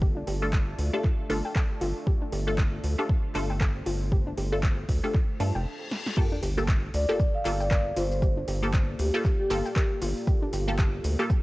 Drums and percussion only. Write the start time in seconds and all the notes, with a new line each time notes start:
0.02 kick
0.27 open hi-hat
0.53 kick, clap
0.79 open hi-hat
1.04 kick, clap
1.30 open hi-hat
1.55 kick, clap
1.81 open hi-hat
2.07 kick
2.32 open hi-hat
2.58 kick, clap
2.84 open hi-hat
3.09 kick
3.35 clap, open hi-hat
3.61 kick, clap
3.86 open hi-hat
4.12 kick
4.38 open hi-hat
4.63 kick, clap
4.89 kick, open hi-hat
5.14 kick, clap
5.40 open hi-hat
5.91 snare
6.06 snare
6.17 kick, crash, shaker
6.43 open hi-hat, shaker
6.58 shaker
6.68 kick, clap, shaker
6.94 open hi-hat, shaker
7.09 shaker
7.20 kick, shaker
7.45 clap, open hi-hat, shaker
7.60 shaker
7.71 kick, clap, shaker
7.96 open hi-hat, shaker
8.12 shaker
8.22 kick, shaker
8.48 open hi-hat, shaker
8.63 shaker
8.73 kick, clap, shaker
8.99 open hi-hat, shaker
9.14 shaker
9.25 kick, clap, shaker
9.50 open hi-hat, shaker
9.66 shaker
9.76 kick, clap, shaker
10.02 open hi-hat, shaker
10.17 shaker
10.27 kick, shaker
10.53 open hi-hat, shaker
10.68 shaker
10.79 kick, clap, shaker
11.04 open hi-hat, shaker
11.19 shaker
11.30 kick, shaker